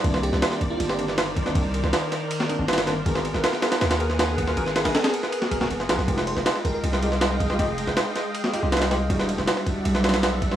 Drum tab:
RD |x---x---x---x---x---x---x---x---|x---x---x---x---x---x---xxx-x---|x---x---x---x-x-x-x-x---x---x---|x---x-x-x-x-x---x---x---x---x---|
SD |--o---o-o-o-------o---o-o-----o-|------o-o---o-----o-----ooo-o---|--o---o-o-o-o-o-o-o---o-o-----o-|--o-o-o-o-o---o---o---o---o-o-o-|
BD |o-----------o---------------o---|o-------------------------------|o---------------------------o---|--------------------o-----------|

RD |x---x---x---x---x---x---x---x---|x---x---x---x---x---x---xxx-x---|x---x---x---x---x---xxx-x---x---|
SD |--o---o-o-o-------o---o-o-----o-|------o-o---o-----o-----ooo-o---|--o---o-o-o-------o-ooo-o-----o-|
BD |o-----------o---------------o---|o-------------------------------|o-----------o---------------o---|